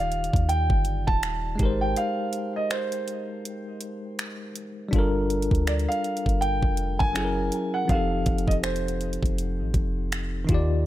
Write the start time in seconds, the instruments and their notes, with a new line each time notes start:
Already playing: 808-style bass D#1, tine electric piano D#3 D#4 F4 G4 D5, grand piano F5
0.12 closed hi-hat
0.24 closed hi-hat
0.33 808-style bass D#2, kick, closed hi-hat
0.49 grand piano G5, closed hi-hat
0.70 808-style bass G1, kick
0.85 closed hi-hat
1.07 808-style bass D#1, grand piano A5, kick
1.23 finger snap, closed hi-hat
1.55 tine electric piano G#3 D#4, closed hi-hat
1.60 808-style bass G#1, tine electric piano G4 A#4, kick
1.65 tine electric piano C5
1.81 grand piano G5
1.96 grand piano F5, closed hi-hat
2.33 closed hi-hat
2.56 grand piano D#5
2.71 grand piano C5, finger snap, closed hi-hat
2.92 closed hi-hat
3.08 closed hi-hat
3.45 closed hi-hat
3.81 closed hi-hat
4.19 finger snap, closed hi-hat
4.56 closed hi-hat
4.89 tine electric piano G3 D4
4.93 808-style bass G1, tine electric piano F4 A4, kick, closed hi-hat
4.99 tine electric piano A#4
5.30 closed hi-hat
5.42 closed hi-hat
5.51 808-style bass D2, kick, closed hi-hat
5.67 grand piano D5, finger snap, closed hi-hat
5.79 closed hi-hat
5.88 grand piano F5, closed hi-hat
6.04 closed hi-hat
6.17 closed hi-hat
6.26 808-style bass G1, kick, closed hi-hat
6.41 grand piano G5, closed hi-hat
6.63 808-style bass F1, kick
6.77 closed hi-hat
6.99 808-style bass F#1, grand piano G#5, kick
7.13 tine electric piano F#3 C#4 E4 G#4, finger snap, closed hi-hat
7.18 tine electric piano A4
7.25 tine electric piano A#4
7.52 closed hi-hat
7.74 grand piano F#5
7.85 tine electric piano F3 C4, kick, closed hi-hat
7.89 808-style bass F1, tine electric piano D#4 G4, grand piano F5
7.95 tine electric piano A4
8.26 808-style bass F1, kick, closed hi-hat
8.38 closed hi-hat
8.47 grand piano D#5, kick, closed hi-hat
8.63 grand piano C5, finger snap, closed hi-hat
8.76 closed hi-hat
8.88 closed hi-hat
9.01 closed hi-hat
9.13 closed hi-hat
9.23 808-style bass F1, kick, closed hi-hat
9.38 closed hi-hat
9.60 808-style bass A1
9.74 808-style bass F1, kick, closed hi-hat
10.12 finger snap, closed hi-hat
10.45 tine electric piano D#3 D#4
10.49 808-style bass D#2, tine electric piano F4 G4, kick, closed hi-hat
10.54 tine electric piano D5